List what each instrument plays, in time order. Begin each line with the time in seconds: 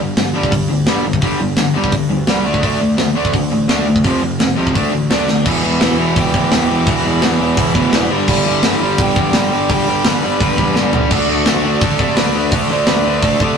0.00 picked electric bass G1, distorted electric guitar G2 D3
0.17 picked electric bass G1, distorted electric guitar G2 D3, snare, open hi-hat
0.34 picked electric bass G1, distorted electric guitar G2 D3 G3
0.43 kick
0.51 distorted electric guitar G2 D3, picked electric bass G2, kick, open hi-hat
0.68 picked electric bass D2, distorted electric guitar G2 D3
0.86 picked electric bass G1, distorted electric guitar G2 D3 G3, snare, open hi-hat
1.04 picked electric bass G1, distorted electric guitar G2 D3
1.13 kick
1.21 picked electric bass G1, distorted electric guitar G2 D3 G3, kick, open hi-hat
1.39 picked electric bass G1, distorted electric guitar G2 D3
1.56 picked electric bass G1, distorted electric guitar G2 D3, snare, open hi-hat
1.74 picked electric bass G1, distorted electric guitar G2 D3 G3
1.84 kick
1.91 distorted electric guitar G2 D3, picked electric bass G2, kick, open hi-hat
2.09 picked electric bass D2, distorted electric guitar G2 D3
2.27 picked electric bass C2, distorted electric guitar G2 D3 G3, snare, open hi-hat
2.44 picked electric bass D2, distorted electric guitar D3 A3 D4
2.54 kick
2.61 picked electric bass D2, distorted electric guitar D3 A3 D4, kick, open hi-hat
2.80 picked electric bass D2, distorted electric guitar D3 A3
2.97 picked electric bass D2, distorted electric guitar D3 A3, snare, open hi-hat
3.15 picked electric bass D2, distorted electric guitar D3 A3 D4
3.25 kick
3.33 distorted electric guitar D3 A3, picked electric bass D3, kick, open hi-hat
3.50 picked electric bass A1, distorted electric guitar D3 A3
3.68 picked electric bass D2, distorted electric guitar D3 A3 D4, snare, open hi-hat
3.86 picked electric bass D2, distorted electric guitar D3 A3
3.96 kick
4.04 picked electric bass F1, distorted electric guitar F2 C3 F3, kick, open hi-hat
4.22 picked electric bass F1, distorted electric guitar F2 C3
4.39 picked electric bass F1, distorted electric guitar F2 C3, snare, open hi-hat
4.56 picked electric bass C2, distorted electric guitar F2 C3 F3
4.67 kick
4.73 picked electric bass D2, distorted electric guitar D3 A3 D4, kick, open hi-hat
4.92 picked electric bass A1, distorted electric guitar D3 A3
5.10 picked electric bass D2, distorted electric guitar D3 A3 D4, lead electric guitar D4 D5, snare, open hi-hat
5.27 picked electric bass D2, distorted electric guitar D3 A3, snare
5.44 picked electric bass E1, distorted electric guitar E2 B2 E3, lead electric guitar E4, kick, crash
5.48 lead electric guitar E5
5.63 picked electric bass E1, distorted electric guitar E2 B2 E3
5.80 picked electric bass E1, distorted electric guitar E2 B2 E3, snare, open hi-hat
5.97 distorted electric guitar E2 B2 E3
6.09 lead electric guitar F#5
6.14 picked electric bass E1, distorted electric guitar E2 B2 E3, lead electric guitar G4, kick, open hi-hat
6.19 lead electric guitar G5
6.33 picked electric bass D2, distorted electric guitar E2 B2 E3, kick
6.51 picked electric bass E1, distorted electric guitar E2 B2 E3, lead electric guitar G4 G5, snare, open hi-hat
6.68 picked electric bass E1, distorted electric guitar E2 B2 E3
6.86 picked electric bass E1, distorted electric guitar E2 B2 E3, lead electric guitar F#4 F#5, kick, open hi-hat
7.04 picked electric bass E1, distorted electric guitar E2 B2 E3
7.21 picked electric bass E1, distorted electric guitar E2 B2 E3, lead electric guitar E4 E5, snare, open hi-hat
7.39 distorted electric guitar E2 B2 E3, lead electric guitar E4 E5
7.57 picked electric bass E1, distorted electric guitar E2 B2 E3, kick, open hi-hat
7.74 picked electric bass D2, distorted electric guitar E2 B2 E3, kick
7.91 picked electric bass E1, distorted electric guitar E2 B2 E3, lead electric guitar D4 D5, snare, open hi-hat
8.10 picked electric bass G1, distorted electric guitar G2 D3 G3
8.27 picked electric bass G1, distorted electric guitar G2 D3 G3, lead electric guitar E4 E5, kick, crash
8.45 picked electric bass G1, distorted electric guitar G2 D3 G3
8.62 picked electric bass G1, distorted electric guitar G2 D3 G3, snare, open hi-hat
8.80 distorted electric guitar G2 D3 G3
8.98 picked electric bass G1, distorted electric guitar G2 D3 G3, lead electric guitar G4 G5, kick, open hi-hat
9.15 picked electric bass E2, distorted electric guitar G2 D3 G3, kick
9.33 picked electric bass G1, distorted electric guitar G2 D3 G3, lead electric guitar G4, snare, open hi-hat
9.37 lead electric guitar G5
9.51 picked electric bass G1, distorted electric guitar G2 D3 G3
9.69 picked electric bass G1, distorted electric guitar G2 D3 G3, lead electric guitar G4 G5, kick, open hi-hat
9.87 picked electric bass G1, distorted electric guitar G2 D3 G3
10.05 picked electric bass G1, distorted electric guitar G2 D3 G3, lead electric guitar B4 B5, snare, open hi-hat
10.22 distorted electric guitar G2 D3 G3, lead electric guitar B4 B5
10.41 picked electric bass G1, distorted electric guitar G2 D3 G3, kick, open hi-hat
10.57 picked electric bass E2, distorted electric guitar G2 D3 G3, kick
10.75 picked electric bass G1, distorted electric guitar G2 D3 G3, snare
10.91 picked electric bass G1, distorted electric guitar G2 D3 G3, floor tom
11.09 picked electric bass D2, distorted electric guitar D3 A3 D4, lead electric guitar F#4 F#5, kick, crash
11.27 picked electric bass D2, distorted electric guitar D3 A3 D4
11.45 picked electric bass D2, distorted electric guitar D3 A3 D4, snare, open hi-hat
11.63 distorted electric guitar D3 A3 D4
11.80 picked electric bass D2, distorted electric guitar D3 A3 D4, lead electric guitar A4 A5, kick, open hi-hat
11.98 picked electric bass C3, distorted electric guitar D3 A3 D4, kick
12.15 picked electric bass D2, distorted electric guitar D3 A3 D4, lead electric guitar B4 B5, snare, open hi-hat
12.34 picked electric bass D2, distorted electric guitar D3 A3 D4
12.51 picked electric bass D2, distorted electric guitar D3 A3 D4, lead electric guitar A4 A5, kick, open hi-hat
12.68 picked electric bass D2, distorted electric guitar D3 A3 D4, lead electric guitar C5 C6
12.86 picked electric bass D2, distorted electric guitar D3 A3 D4, lead electric guitar B4 B5, snare, open hi-hat
13.04 distorted electric guitar D3 A3 D4
13.21 picked electric bass D2, distorted electric guitar D3 A3 D4, lead electric guitar A4 A5, kick, open hi-hat
13.40 picked electric bass C3, distorted electric guitar D3 A3 D4, kick